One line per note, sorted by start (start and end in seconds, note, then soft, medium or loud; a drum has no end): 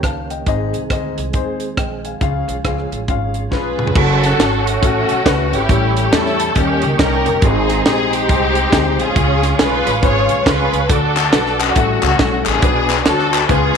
0.00 0.40 C#2 medium
0.00 0.26 D#3 medium
0.00 2.19 D#3 medium
0.00 0.46 A#3 medium
0.00 0.43 C#4 soft
0.00 0.46 G4 medium
0.00 kick medium
0.00 cross-stick medium
0.00 closed hi-hat medium
0.04 0.29 F5 medium
0.04 0.29 A5 medium
0.30 0.46 D#5 soft
0.30 0.72 G5 medium
0.30 closed hi-hat medium
0.46 0.70 G#1 loud
0.46 1.13 G#2 medium
0.46 3.92 G#3 soft
0.46 2.19 C4 soft
0.46 0.79 C4 loud
0.46 0.79 D#4 medium
0.46 3.92 G#4 medium
0.46 0.80 G#4 medium
0.46 0.80 D#5 loud
0.46 kick medium
0.46 closed hi-hat medium
0.73 0.88 C2 medium
0.73 closed hi-hat medium
0.90 1.13 D2 medium
0.90 1.23 C4 medium
0.90 1.23 D#4 medium
0.90 1.23 G#4 medium
0.90 1.24 D#5 medium
0.90 kick medium
0.90 cross-stick medium
0.90 closed hi-hat medium
1.18 1.32 C2 medium
1.18 closed hi-hat medium
1.33 1.71 D#2 medium
1.33 1.66 C4 medium
1.33 1.66 D#4 medium
1.33 1.67 G#4 medium
1.33 1.67 C5 medium
1.33 kick medium
1.33 closed hi-hat medium
1.60 closed hi-hat medium
1.77 2.15 A#1 medium
1.77 2.04 D#5 soft
1.77 2.03 G5 medium
1.77 kick medium
1.77 cross-stick medium
1.77 closed hi-hat medium
2.05 2.21 F5 soft
2.05 2.46 G#5 medium
2.05 closed hi-hat medium
2.21 2.44 C#2 loud
2.21 2.88 C#3 medium
2.21 3.94 F3 medium
2.21 2.53 C#4 medium
2.21 3.94 C#4 soft
2.21 2.54 F4 medium
2.21 2.54 G#4 medium
2.21 2.54 F5 medium
2.21 kick medium
2.21 closed hi-hat medium
2.48 2.63 B1 medium
2.48 cross-stick soft
2.48 closed hi-hat medium
2.64 2.88 C#2 medium
2.64 2.97 C#4 medium
2.64 2.97 F4 medium
2.64 2.98 G#4 medium
2.64 2.98 F5 medium
2.64 kick medium
2.64 cross-stick medium
2.64 closed hi-hat medium
2.78 cross-stick soft
2.92 3.06 A1 medium
2.92 closed hi-hat medium
3.08 3.46 G#1 medium
3.08 3.41 C#4 medium
3.08 3.41 F4 medium
3.08 3.41 G#4 medium
3.08 3.41 F5 medium
3.08 kick medium
3.08 closed hi-hat medium
3.34 closed hi-hat medium
3.51 3.75 B1 medium
3.51 3.84 C#4 medium
3.51 3.84 F4 medium
3.51 3.93 F4 medium
3.51 3.84 G#4 medium
3.51 3.93 G#4 medium
3.51 3.93 B4 medium
3.51 3.85 B4 medium
3.51 kick medium
3.51 snare soft
3.78 3.93 C#2 medium
3.78 mid tom medium
3.87 floor tom medium
3.95 4.33 F#1 loud
3.95 4.27 C#4 medium
3.95 4.65 C#4 medium
3.95 4.28 F#4 medium
3.95 4.66 F#4 medium
3.95 5.67 A4 medium
3.95 4.66 A4 loud
3.95 4.28 A4 medium
3.95 5.67 C#5 medium
3.95 5.67 F#5 medium
3.95 6.53 C#6 medium
3.95 kick loud
3.95 crash loud
4.23 snare soft
4.23 closed hi-hat medium
4.38 4.76 G#1 loud
4.38 4.71 C#4 medium
4.38 4.71 F#4 medium
4.38 4.72 A4 medium
4.38 snare loud
4.38 closed hi-hat medium
4.66 5.49 A3 medium
4.66 5.49 C#4 medium
4.66 5.53 F#4 loud
4.66 closed hi-hat medium
4.82 5.05 A1 loud
4.82 5.14 C#4 medium
4.82 5.15 F#4 medium
4.82 5.15 A4 loud
4.82 kick loud
4.82 closed hi-hat medium
5.09 5.23 B1 medium
5.09 closed hi-hat medium
5.25 5.49 C#2 loud
5.25 5.58 C#4 loud
5.25 5.58 F#4 medium
5.25 5.59 B4 loud
5.25 kick medium
5.25 snare loud
5.25 closed hi-hat loud
5.52 5.67 G#1 medium
5.52 6.13 C#4 medium
5.52 6.13 E4 medium
5.52 5.96 G4 loud
5.52 closed hi-hat medium
5.69 6.06 A1 loud
5.69 6.35 A2 medium
5.69 6.01 G3 medium
5.69 6.01 A3 medium
5.69 6.02 C#4 medium
5.69 6.02 E4 medium
5.69 6.56 A4 medium
5.69 6.02 A4 medium
5.69 6.56 E5 medium
5.69 7.41 G5 medium
5.69 kick loud
5.69 closed hi-hat medium
5.97 6.12 G4 medium
5.97 closed hi-hat medium
6.12 6.49 E2 loud
6.12 6.45 G3 medium
6.12 6.45 A3 medium
6.12 6.45 C#4 medium
6.12 6.54 C#4 medium
6.12 6.45 E4 medium
6.12 6.54 E4 medium
6.12 6.45 G4 medium
6.12 6.57 A4 loud
6.12 snare loud
6.12 closed hi-hat loud
6.26 snare soft
6.40 closed hi-hat loud
6.55 6.79 D#2 loud
6.55 7.22 D#3 medium
6.55 6.88 G3 medium
6.55 6.88 A#3 medium
6.55 7.39 A#3 medium
6.55 6.88 C#4 medium
6.55 6.99 C#4 medium
6.55 6.88 D#4 medium
6.55 6.99 G4 loud
6.55 7.42 A#4 medium
6.55 6.89 A#4 medium
6.55 9.14 D#5 medium
6.55 kick loud
6.55 closed hi-hat medium
6.82 6.97 C#2 loud
6.82 closed hi-hat medium
6.99 7.22 C2 loud
6.99 7.31 G3 medium
6.99 7.31 A#3 medium
6.99 7.32 C#4 medium
6.99 7.40 C#4 medium
6.99 7.32 D#4 medium
6.99 7.40 G4 medium
6.99 7.32 A#4 medium
6.99 7.43 A#4 loud
6.99 kick loud
6.99 snare loud
6.99 closed hi-hat medium
7.26 7.40 F1 loud
7.26 closed hi-hat medium
7.42 7.79 G#1 loud
7.42 8.09 G#2 medium
7.42 10.87 G#3 medium
7.42 7.74 C4 medium
7.42 8.12 C4 medium
7.42 7.75 D#4 medium
7.42 8.12 D#4 medium
7.42 7.75 G#4 medium
7.42 7.86 G#4 loud
7.42 9.15 C5 medium
7.42 9.15 C6 medium
7.42 kick loud
7.42 closed hi-hat medium
7.69 snare soft
7.69 closed hi-hat medium
7.85 8.29 A#1 medium
7.85 8.18 C4 medium
7.85 8.18 D#4 medium
7.85 8.19 G4 medium
7.85 8.11 G#4 loud
7.85 snare loud
7.85 closed hi-hat medium
8.13 8.96 C4 medium
8.13 8.96 D#4 medium
8.13 9.00 G4 loud
8.13 closed hi-hat medium
8.28 8.66 C2 loud
8.28 8.61 C4 medium
8.28 8.61 D#4 medium
8.28 8.62 G#4 medium
8.28 kick loud
8.28 closed hi-hat medium
8.55 closed hi-hat medium
8.72 8.99 D2 loud
8.72 9.04 C4 medium
8.72 9.05 D#4 medium
8.72 9.05 G#4 loud
8.72 kick loud
8.72 snare loud
8.72 closed hi-hat loud
8.99 9.14 A#1 medium
8.99 9.83 C#4 medium
8.99 9.59 F4 medium
8.99 9.59 G#4 loud
8.99 closed hi-hat medium
9.15 9.53 C#2 loud
9.15 9.82 C#3 medium
9.15 9.48 C#4 medium
9.15 9.48 F4 medium
9.15 9.48 G#4 medium
9.15 10.88 C#5 medium
9.15 10.88 F5 medium
9.15 10.88 C#6 medium
9.15 kick loud
9.15 closed hi-hat medium
9.43 snare soft
9.43 closed hi-hat medium
9.58 9.82 B1 medium
9.58 9.91 C#4 medium
9.58 9.91 F4 medium
9.58 10.03 F4 medium
9.58 9.92 G#4 medium
9.58 10.04 G#4 medium
9.58 10.04 B4 loud
9.58 snare loud
9.58 closed hi-hat medium
9.86 10.00 A1 loud
9.86 closed hi-hat medium
10.02 10.26 G#1 loud
10.02 10.34 C#4 medium
10.02 10.35 F4 medium
10.02 10.46 F4 medium
10.02 10.46 G#4 medium
10.02 10.35 B4 medium
10.02 10.45 C#5 loud
10.02 kick loud
10.02 closed hi-hat medium
10.29 10.44 B1 medium
10.29 closed hi-hat medium
10.46 10.69 C#2 loud
10.46 10.78 C#4 medium
10.46 10.79 F4 medium
10.46 10.87 F4 medium
10.46 10.87 G#4 medium
10.46 10.79 B4 medium
10.46 10.90 B4 loud
10.46 kick loud
10.46 snare loud
10.46 closed hi-hat medium
10.73 10.87 C#2 medium
10.73 closed hi-hat medium
10.88 11.26 D2 loud
10.88 11.55 D3 medium
10.88 11.21 D4 medium
10.88 11.72 D4 medium
10.88 11.22 F#4 medium
10.88 11.59 F#4 medium
10.88 12.61 A4 medium
10.88 11.22 A4 medium
10.88 11.60 A4 loud
10.88 11.75 D5 medium
10.88 11.75 F#5 medium
10.88 11.75 D6 medium
10.88 kick loud
10.88 closed hi-hat loud
11.16 snare soft
11.16 clap medium
11.16 closed hi-hat medium
11.32 11.70 B1 medium
11.32 11.65 D4 medium
11.32 11.65 F#4 medium
11.32 11.66 B4 medium
11.32 snare loud
11.32 closed hi-hat medium
11.46 snare soft
11.60 12.02 C#4 medium
11.60 12.03 F#4 loud
11.60 clap loud
11.60 closed hi-hat medium
11.75 11.99 A1 loud
11.75 12.42 A2 medium
11.75 12.08 G3 medium
11.75 12.08 A3 medium
11.75 12.08 C#4 medium
11.75 12.09 E4 medium
11.75 12.09 A4 medium
11.75 12.62 E5 medium
11.75 12.62 C#6 medium
11.75 kick loud
11.75 closed hi-hat medium
12.02 12.17 C#2 loud
12.02 12.59 C#4 medium
12.02 12.44 F#4 loud
12.02 clap loud
12.02 closed hi-hat medium
12.19 12.42 B1 loud
12.19 12.51 G3 medium
12.19 12.51 A3 medium
12.19 12.52 C#4 medium
12.19 12.52 E4 medium
12.19 12.52 A4 medium
12.19 kick loud
12.19 snare loud
12.19 closed hi-hat medium
12.46 12.60 A1 loud
12.46 13.30 B3 medium
12.46 13.06 D4 medium
12.46 13.07 G#4 loud
12.46 clap loud
12.46 closed hi-hat medium
12.62 13.00 B1 loud
12.62 13.29 B2 medium
12.62 12.95 D4 medium
12.62 12.95 F#4 medium
12.62 13.77 B4 medium
12.62 12.95 B4 medium
12.62 13.48 D5 medium
12.62 13.48 F#5 medium
12.62 13.48 D6 medium
12.62 kick loud
12.62 closed hi-hat medium
12.89 snare soft
12.89 clap medium
12.89 closed hi-hat medium
13.05 13.43 D2 medium
13.05 13.38 D4 medium
13.05 13.47 D4 medium
13.05 13.39 F#4 medium
13.05 13.47 F#4 medium
13.05 13.47 A4 loud
13.05 13.39 C#5 medium
13.05 snare loud
13.05 closed hi-hat medium
13.19 snare soft
13.33 clap loud
13.33 closed hi-hat medium
13.49 13.72 C#2 loud
13.49 13.77 C#3 medium
13.49 13.77 G#3 medium
13.49 13.77 B3 medium
13.49 13.77 C#4 medium
13.49 13.77 F4 medium
13.49 13.77 G#4 loud
13.49 13.77 B4 medium
13.49 13.77 F5 medium
13.49 13.77 G#5 medium
13.49 13.77 C#6 medium
13.49 kick loud
13.49 closed hi-hat medium